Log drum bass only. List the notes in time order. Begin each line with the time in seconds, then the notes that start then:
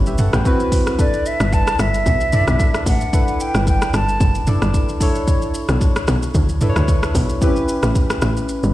Already playing: G1
0.33 A1
1.40 G1
1.79 G1
2.06 B1
2.47 B1
2.86 A1
3.55 G1
3.94 G1
4.20 F#1
4.62 G1
5.69 B1
6.08 B1
6.35 D2
6.76 D2
7.15 B1
7.83 A1
8.22 A1
8.63 G1